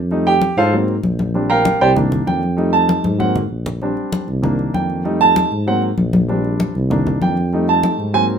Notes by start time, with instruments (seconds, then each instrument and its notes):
Already playing: tuba F2
0.11 grand piano G3 A3 D#4, high conga
0.26 grand piano G4 G5, high conga
0.41 high conga
0.57 tuba G#2, grand piano F4 A4 C5 F5, high conga
0.73 grand piano F#3 A#3 C4, high conga
0.88 high conga
1.03 tuba A#1, high conga
1.19 high conga
1.34 grand piano G3 C4 D4, high conga
1.50 grand piano A#4 F5 G5 A#5, high conga
1.65 high conga
1.80 tuba C2, grand piano G4 C5 D5 G5, high conga
1.96 grand piano D#3 A#3 D4, high conga, low conga
2.12 high conga, low conga
2.27 tuba F2, grand piano G5, high conga
2.43 high conga
2.57 grand piano G3 A3 D#4, high conga
2.73 grand piano A5, high conga
2.89 high conga
3.04 tuba G#2, high conga
3.19 grand piano F#3 A#3 C4 F#5, high conga
3.36 low conga
3.51 tuba A#1
3.66 low conga
3.82 grand piano G3 C4 D4, high conga
3.97 high conga
4.12 high conga
4.28 tuba C2, high conga
4.42 grand piano D#3 A#3 D4, high conga, low conga
4.59 high conga
4.74 tuba F2, grand piano G5, high conga
4.90 high conga
5.04 grand piano G3 A3 D#4, high conga
5.21 grand piano A5, high conga
5.36 high conga
5.51 tuba G#2, high conga
5.67 grand piano F#3 A#3 C4 F#5, high conga
5.82 high conga
5.97 tuba A#1, high conga
6.13 high conga
6.28 grand piano G3 C4 D4, high conga
6.45 high conga
6.60 high conga
6.75 tuba C2, high conga
6.90 grand piano D#3 A#3 D4, high conga, low conga
7.07 high conga, low conga
7.21 tuba F2, grand piano G5, high conga
7.37 high conga
7.53 grand piano G3 A3 D#4, high conga
7.68 grand piano A5, high conga
7.83 high conga
7.98 tuba G#2, high conga
8.14 grand piano F#3 A#3 C4 G#5, high conga
8.30 high conga